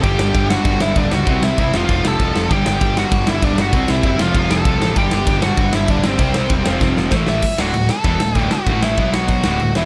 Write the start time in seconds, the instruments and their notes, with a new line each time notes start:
0.03 picked electric bass G1, distorted electric guitar G2 D3 G3, lead electric guitar G4 G5, kick, crash
0.19 picked electric bass G1, snare
0.34 picked electric bass G1, distorted electric guitar G2 D3 G3, kick, crash
0.50 distorted electric guitar G2 D3 G3, lead electric guitar F#4 F#5, snare
0.65 picked electric bass G1, distorted electric guitar G2 D3 G3, kick, crash
0.80 picked electric bass G1, lead electric guitar E4 E5, snare
0.96 picked electric bass D1, distorted electric guitar G2 D3 G3, lead electric guitar D4 D5, kick, crash
1.11 picked electric bass C#2, distorted electric guitar G2 D3 G3, lead electric guitar F#4 F#5, snare
1.27 picked electric bass C2, distorted electric guitar C3 G3 C4, kick, crash
1.41 picked electric bass C2, lead electric guitar E4 E5, snare
1.58 picked electric bass C2, distorted electric guitar C3 G3 C4, lead electric guitar E4 E5, kick, crash
1.73 picked electric bass F1, distorted electric guitar F2 C3 F3, lead electric guitar F4 F5, snare
1.89 picked electric bass F1, distorted electric guitar F2 C3 F3, lead electric guitar F4 F5, kick, crash
2.05 picked electric bass F1, lead electric guitar A4 A5, snare
2.19 picked electric bass C2, distorted electric guitar F2 C3 F3, kick, crash
2.23 overdriven electric guitar F3
2.35 picked electric bass F1, distorted electric guitar F2 C3 F3, snare
2.50 picked electric bass G1, distorted electric guitar G2 D3 G3, lead electric guitar G4 G5, kick, crash
2.66 picked electric bass G1, snare
2.81 picked electric bass G1, distorted electric guitar G2 D3 G3, kick, crash
2.96 distorted electric guitar G2 D3 G3, lead electric guitar F#4 F#5, snare
3.11 picked electric bass G1, distorted electric guitar G2 D3 G3, kick, crash
3.27 picked electric bass G1, lead electric guitar E4 E5, snare
3.42 picked electric bass D1, distorted electric guitar G2 D3 G3, lead electric guitar D4 D5, kick, crash
3.56 picked electric bass G1, distorted electric guitar G2 D3 G3, snare
3.61 lead electric guitar F#4 F#5
3.72 picked electric bass C2, distorted electric guitar C3 G3 C4, kick, crash
3.88 picked electric bass C2, lead electric guitar E4 E5, snare
4.03 picked electric bass F#1, distorted electric guitar C3 G3 C4, lead electric guitar E4 E5, kick, crash
4.18 picked electric bass F1, distorted electric guitar F2 C3 F3, lead electric guitar F4 F5, snare
4.33 picked electric bass F1, distorted electric guitar F2 C3 F3, lead electric guitar F4, kick, crash
4.37 lead electric guitar F5
4.50 picked electric bass F1, lead electric guitar A4 A5, snare
4.65 picked electric bass C2, distorted electric guitar F2 C3 F3, kick, crash
4.80 picked electric bass A1, distorted electric guitar F2 C3 F3, snare
4.94 picked electric bass G1, distorted electric guitar G2 D3 G3, kick, crash
4.98 lead electric guitar G4 G5
5.11 picked electric bass G1, snare
5.25 picked electric bass G1, distorted electric guitar G2 D3 G3, kick, crash
5.41 distorted electric guitar G2 D3 G3, lead electric guitar F#4 F#5, snare
5.56 picked electric bass G1, distorted electric guitar G2 D3 G3, kick, crash
5.73 picked electric bass G1, lead electric guitar E4 E5, snare
5.88 picked electric bass D1, distorted electric guitar G2 D3 G3, lead electric guitar D4 D5, kick, crash
6.02 picked electric bass G1, distorted electric guitar G2 D3 G3, lead electric guitar C4, snare
6.07 lead electric guitar C5
6.18 picked electric bass C2, distorted electric guitar C3 G3 C4, kick, crash
6.34 picked electric bass C2, snare
6.49 picked electric bass E1, distorted electric guitar C3 G3 C4, kick, crash
6.64 picked electric bass F1, distorted electric guitar F2 C3 F3, snare
6.79 picked electric bass F1, distorted electric guitar F2 C3 F3, kick, snare
6.97 picked electric bass F1, snare
7.11 picked electric bass A1, distorted electric guitar A2 E3 A3, kick, snare
7.27 picked electric bass A1, distorted electric guitar A2 E3 A3, lead electric guitar E4 E5, snare
7.42 kick, crash
7.58 picked electric bass D1, distorted electric guitar D2 A2 D3, lead electric guitar F#4 F#5, snare
7.74 picked electric bass D1, distorted electric guitar D2 A2, crash
7.89 lead electric guitar A4 A5, snare
8.04 picked electric bass E1, distorted electric guitar E2 B2 E3, kick, crash
8.20 picked electric bass D1, distorted electric guitar D2 A2, snare
8.35 picked electric bass D1, distorted electric guitar D2 A2 D3, kick, crash
8.39 lead electric guitar G5
8.51 lead electric guitar F#4 F#5, muted overdriven electric guitar stroke, muted distorted electric guitar stroke, muted picked electric bass stroke, snare
8.66 picked electric bass A1, distorted electric guitar A2 E3 A3, kick, crash
8.83 lead electric guitar E4 E5, snare
8.97 picked electric bass B1, distorted electric guitar B2 F#3 B3, lead electric guitar E4 E5, kick, crash
9.13 lead electric guitar F#4 F#5, snare
9.28 kick, crash
9.44 picked electric bass D1, distorted electric guitar D2 A2 D3, snare
9.60 picked electric bass D1, distorted electric guitar D2 A2, crash
9.75 picked electric bass E1, distorted electric guitar E2 B2 E3, lead electric guitar E4 E5, snare